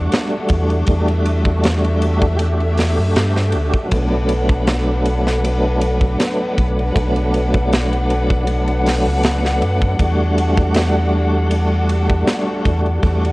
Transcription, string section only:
Already playing: A3 D4 A4 F#5
0.87 E5
3.91 D4 B4 F#5
9.99 G3 A4

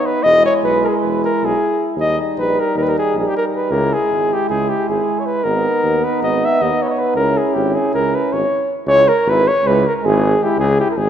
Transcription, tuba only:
0.24 E1
0.64 B1
1.04 E1
1.43 B1
1.96 D#2
2.37 A#1
2.76 D#2
3.15 A#1
3.71 C#2
4.10 G#1
4.50 C#2
4.89 G#1
5.45 G#1
5.83 D#2
6.21 G#1
6.61 D#2
7.15 C#2
7.55 G#1
7.94 C#2
8.32 G#1
8.86 C#2
9.26 G#1
9.64 C#2
10.05 G#1
10.58 C#2
10.97 G#1

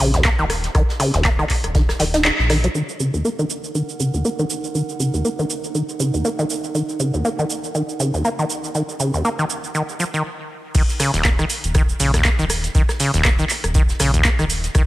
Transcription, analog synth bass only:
0.00 A#1
0.39 D#1
0.75 D#1
1.14 D#1
1.64 D#1
2.00 D#1
2.39 A#1
10.75 D#1
11.14 D#1
11.64 D#1
12.00 A#1
12.39 D#1
12.75 D#1
13.14 D#1
13.64 D#1
14.00 A#1
14.39 D#1
14.75 D#1

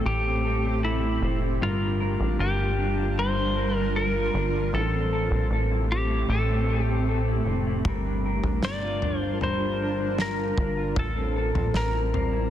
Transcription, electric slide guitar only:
0.06 G4
0.85 E4
1.63 F4
2.40 G4
3.19 C5
3.77 A#4
3.96 A#4
4.75 A4
5.92 G4
6.30 A4
6.84 G4
8.65 D5
9.18 C5
9.43 C5
10.22 A#4
10.99 A4
11.77 A#4

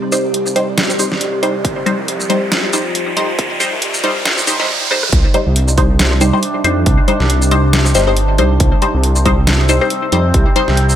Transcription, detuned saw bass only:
0.25 C2
0.99 G1
1.21 C2
1.65 C2
1.99 C2
3.17 F2
3.39 C2
3.73 C2
4.47 G1
5.13 C2
5.47 C2
6.64 F2
6.86 C2
7.20 C2
7.95 G1
8.39 C2
8.60 C2
8.94 C2
10.13 F2
10.34 C2
10.68 C2

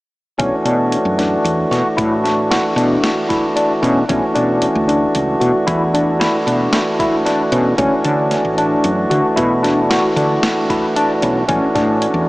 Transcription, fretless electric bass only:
0.39 B1
0.65 B2
1.05 F#2
1.44 E2
1.71 B2
1.98 A2
2.76 B2
3.83 B2
4.10 B1
4.36 B2
4.75 D2
5.15 C#2
5.41 B2
5.68 E2
6.47 B2
7.52 B2
7.79 D2
8.05 D3
8.45 A1
8.84 F#2
9.11 D3
9.38 B2
10.16 D3
11.23 B1
11.49 A1
11.75 A2
12.14 E2

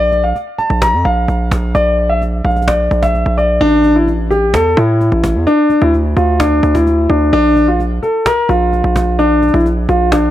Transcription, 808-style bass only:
Already playing: A#1
0.70 A#1
0.93 F2
1.05 A#1
1.28 A#1
1.52 A#1
1.75 A#1
2.45 A#1
2.91 A#1
3.26 A#1
3.61 A1
4.54 E2
4.77 A2
5.12 A1
5.35 E2
5.82 D2
6.17 D2
6.63 D2
7.10 D2
7.33 A#1
8.49 A#1
8.84 A#1
9.54 A#1
9.89 A#1

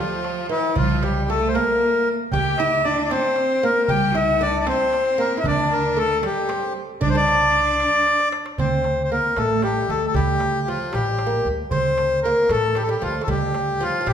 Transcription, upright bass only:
0.76 C2
2.32 D2
3.88 C2
5.45 D2
7.02 C2
8.58 D2
9.37 A1
9.88 D2
10.14 D2
10.94 A1
11.45 D2
11.71 D2
12.49 A1
13.02 D2
13.27 D2
14.06 A1

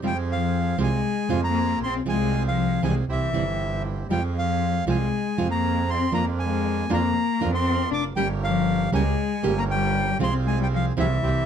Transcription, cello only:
0.03 G3
0.30 F3
0.82 G#3
1.46 A#3
1.85 C4
2.09 G#3
2.47 F3
2.84 G#3
3.10 E3
4.10 G3
4.35 F3
4.86 G#3
5.51 A#3
5.89 C4
6.14 A#3
6.41 G#3
6.89 A#3
7.53 C4
7.91 D4
8.17 G3
8.43 F3
8.93 G#3
9.58 A#3
9.70 G3
10.20 C4
10.46 G#3
10.60 G3
10.73 F3
10.97 E3

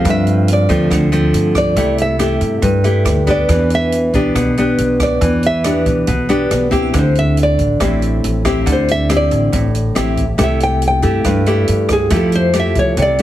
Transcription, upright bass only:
0.05 G2
0.69 D2
0.91 D2
1.33 G2
1.76 C2
2.41 G2
2.62 G2
3.05 D2
3.49 E2
4.14 B1
4.35 B1
4.78 B1
5.21 E2
5.86 B1
6.08 B1
6.51 B1
6.94 D2
7.59 A1
7.80 A1
8.24 A1
8.67 D2
9.31 A1
9.53 A1
9.96 A1
10.39 C2
11.03 G2
11.25 G2
11.68 G2
12.11 F2
12.76 C2
12.97 C2

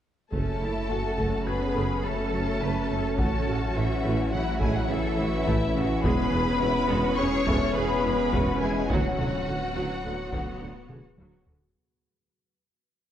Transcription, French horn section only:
0.32 A3
1.47 B3
2.04 A3
3.19 A3
3.75 E3
4.32 F#3
4.61 G#3
4.75 F#3
4.88 E3
6.03 B3
7.18 C#4
7.75 B3
8.62 G#3
8.89 F#3

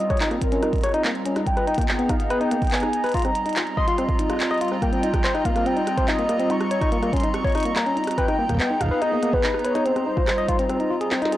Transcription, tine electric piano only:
0.10 C#5
0.21 D#4
0.31 A#3
0.52 C#4
0.63 D#4
0.84 C#5
0.94 D#4
1.05 A#3
1.26 C#4
1.36 D#4
1.57 B4
1.67 D#4
1.78 A#3
1.99 B3
2.09 D#4
2.30 B4
2.41 D#4
2.51 A#3
2.72 B3
2.83 D#4
3.04 B4
3.14 F4
3.25 C4
3.46 D#4
3.56 F4
3.77 D#5
3.88 F4
3.98 C4
4.19 D#4
4.30 F4
4.51 D#5
4.61 F4
4.72 C4
4.82 A#3
4.93 C4
5.03 D#4
5.24 C5
5.35 D#4
5.45 A#3
5.56 A#3
5.66 C4
5.77 D#4
5.98 C5
6.08 D#4
6.19 A#3
6.29 A#3
6.40 C4
6.50 D#4
6.71 C#5
6.81 D#4
6.92 A#3
7.02 A#3
7.13 C#4
7.23 D#4
7.44 C#5
7.55 D#4
7.65 A#3
7.76 A#3
7.86 C#4
7.97 D#4
8.18 B4
8.28 D#4
8.39 A#3
8.49 A#3
8.60 B3
8.70 D#4
8.91 B4
9.02 D#4
9.12 A#3
9.23 A#3
9.33 B3
9.44 D#4
9.65 B4
9.75 D#4
9.86 C4
9.96 C4
10.07 D#4
10.17 F4
10.38 D#5
10.48 F4
10.59 C4
10.69 C4
10.80 D#4
10.90 F4
11.01 G#4
11.11 C4
11.22 D#4
11.32 G#4

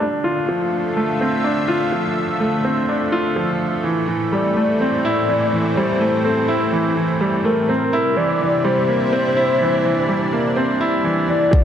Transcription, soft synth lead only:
4.34 D5
4.81 D5
5.77 C5
6.25 A4
7.45 A#4
8.17 D5
8.64 C5
11.28 D5

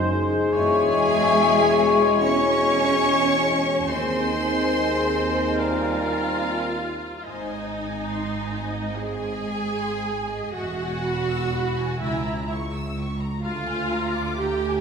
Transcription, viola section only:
0.53 G#4
2.21 C#5
3.89 C5
5.59 F4
7.18 F4
7.25 D#4
8.98 G#4
10.55 F#4
12.02 E4
13.43 F4
14.39 G4

